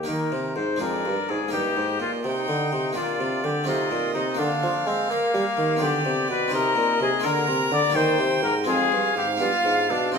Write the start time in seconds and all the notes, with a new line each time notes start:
0.03 A#3 D#4 G4 A#4
0.08 D#3
0.32 C3
0.56 G#2 C5
0.76 G#3 D4 G#4 D5
0.81 F2 A#4
1.05 G2
1.29 G#2 G#4
1.48 A#3 D#4 G4
1.53 G2 G4 D#5
1.77 G#2
2.00 A#2 F4
2.24 C3 D#4 G5
2.48 D3
2.73 C3
2.93 A#2 A#3 D4 F4 D5
2.97 A#2 F4
3.20 C3
3.43 D3 G4
3.64 C3 A3 C4 D#4 F4 D#5
3.68 C3
3.91 A#2
4.14 C3 D#4
4.34 A#3 D4 F4
4.39 D3 F5
4.63 F3
4.86 G#3 C4
5.10 A#3
5.34 G3
5.57 D#3
5.76 B3 F4 G4
5.81 D3 G4 D5
6.05 C3
6.28 B2 B4
6.48 C4 D#4 G4
6.53 C3 A#4 D#5
6.75 A#2
7.00 C3 G#4
7.20 A#3 F4 A#4
7.24 D3 A#4 A#5
7.47 C3
7.71 D3 D5
7.89 A#3 D#4 G4
7.94 D#3 C5 G5
8.18 C3
8.43 G#2 A#4
8.64 F2 G#3 C4 F4 G#4
8.69 F5
8.92 G2
9.16 G#2 G4
9.37 G2 B3 D4
9.42 F4
9.64 G#2
9.90 B2 D4
10.12 C3 C4 D#4 D#5